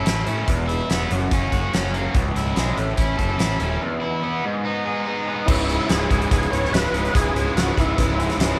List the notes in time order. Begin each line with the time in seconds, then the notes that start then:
Already playing: A2 C#4 A4
0.05 A1 A2 E3 A3 C#4 E4, snare, closed hi-hat
0.24 A2 A3 C#4 E4 A4, closed hi-hat
0.45 E1 E2 B2 E3 G#3 B3 E4, kick, closed hi-hat
0.68 E3 G#3 B3 E4, closed hi-hat
0.89 E1 E2 B2 E3 G#3 B3 E4, snare, closed hi-hat
1.10 F#1 F#2 F#3 A#3 C#4 F#4, closed hi-hat
1.31 F#1 A#3 C#4, kick, closed hi-hat
1.52 F#1 C#4 F#4, kick, closed hi-hat
1.56 A#3
1.72 F#1 F#3 A#3 C#4 F#4, snare, closed hi-hat
1.94 A#3 F#4, closed hi-hat
2.15 C#1 C#2 C#3 E3 G#3 C#4 E4, kick, closed hi-hat
2.35 C#1 G#3 C#4 E4, snare, closed hi-hat
2.56 B1 C#3 E3 G#3 C#4 E4, snare, closed hi-hat
2.76 A1 A2 E3 A3 C#4 E4, closed hi-hat
2.97 A1 C#4 E4, kick, closed hi-hat
3.17 F#1 A3 C#4 E4 A4, kick, closed hi-hat
3.38 A1 A2 E3 A3 C#4 E4, snare, closed hi-hat
3.59 D#1 A3 C#4 E4 A4, closed hi-hat
3.80 E2 B2 E3 G#3 B3 E4
4.01 E3 G#3 B3 E4
4.22 E2 B2 E3 G#3 B3 E4
4.44 G#2 D#3 G#3 B3 D#4 G#4
4.65 B3 D#4
4.85 G#3 B3 D#4 G#4
5.05 G#2 D#3 G#3 B3 D#4 G#4
5.27 G#3 B3 D#4 G#4
5.46 C#1 C#2 G#2 C#3 E3 G#3 B3 C#4 E4 G#4 B4, kick, crash
5.50 C#3 E4
5.67 G#3 B3 C#4 E4 G#4 C#5, closed hi-hat
5.71 C#3
5.88 C#1 C#3 E3 G#3 B3 C#4 E4 G#4 C#5, snare, closed hi-hat
6.10 C#1 C#3 G#3 B3 C#4 E4 G#4 B4, kick, closed hi-hat
6.22 closed hi-hat
6.30 C#1 C#2 G#2 C#3 E3 G#3 B3 C#4 E4 G#4 C#5, kick, closed hi-hat
6.43 closed hi-hat
6.50 C#1 G#2 C#3 C#4 E4 G#4 B4 C#5, closed hi-hat
6.55 C#2
6.65 snare
6.70 C#1 C#2 C#3 E3 G#3 B3 C#4 E4 G#4 B4 C#5, closed hi-hat
6.75 G#2 C#3, snare
6.86 snare
6.92 C#1 G#3 B3 C#4 E4 G#4 B4, closed hi-hat
6.96 C#3
7.05 closed hi-hat
7.13 C#1 C#2 G#2 C#3 E3 G#3 B3 C#4 E4 G#4 B4, kick, closed hi-hat
7.18 C#3
7.33 C#1 G#3 B3 C#4 E4 G#4 B4, closed hi-hat
7.37 C#3
7.55 C#1 C#3 E3 G#3 B3 C#4 E4 F#4 G#4 C#5, snare, closed hi-hat
7.75 C#1 C#3 G#3 B3 C#4 E4 G#4, kick, snare, closed hi-hat
7.79 E4 B4
7.97 C#1 C#2 G#2 C#3 E3 G#3 B3 C#4 E4 G#4 B4, kick, closed hi-hat
8.18 G#2 C#3 C#4 E4 G#4 B4, closed hi-hat
8.22 C#2
8.30 snare, closed hi-hat
8.37 C#1 C#2 C#3 E3 G#3 B3 C#4 E4 G#4 B4, closed hi-hat
8.41 G#2 C#3 E4, snare